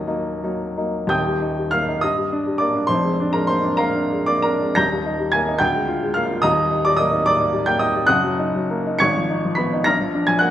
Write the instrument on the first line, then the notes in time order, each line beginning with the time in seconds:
upright piano
Already playing: D#1 D#2 F#3 A#3 D#4 F#4 D#5
0.07 F#3 A#3 D#4
0.43 F#3 A#3 D#4
0.77 F#3 A#3 D#4
1.07 D#1 D#2 G5 D#6 G6
1.27 G3
1.41 D#4
1.59 G3
1.71 A#3 F5 F6
1.88 D#4
2.01 G2 D#5 D#6
2.18 G3
2.32 D4
2.47 G3
2.58 A#3 D5 D6
2.75 D4
2.87 F1 F2 C5 C6
3.04 G#3
3.20 D4
3.33 G#3 A#4 A#5
3.47 A#3 C5 C6
3.64 D4
3.77 A#3 A#4 F5 A#5
3.95 D4
4.11 G#3
4.26 A#3 D5 D6
4.42 D4 A#4 A#5
4.61 G#3
4.75 D#1 D#2 A#5 G6 A#6
4.93 G3
5.06 D#4
5.20 G3
5.32 A#3 G#5 G#6
5.48 D#4
5.59 D2 G5 G6
5.75 G#3
5.88 F4
6.03 G#3
6.14 A#3 F5 F6
6.31 F4
6.42 D#1 D#2 D#5 A#5 D#6
6.58 G3
6.71 D#4
6.85 G3 D5 D6
6.97 A#3 D#5 D#6
7.13 D#4
7.26 A#3 D5 D6
7.40 D#4
7.53 G3
7.66 A#3 G5 G6
7.79 D#4 D#5 D#6
7.95 G3
8.07 F#1 F#5 D#6 F#6
8.23 F#3
8.39 D#4
8.55 F#3
8.70 A#3
8.87 D#4
8.99 G#1 C#6 G#6 C#7
9.17 F3
9.30 D#4
9.45 F3
9.55 B3 B5 B6
9.73 D#4
9.84 A#1 A#5 F6 A#6
10.00 F3
10.15 D4
10.27 F3 G#5 G#6
10.39 A#3 F#5 F#6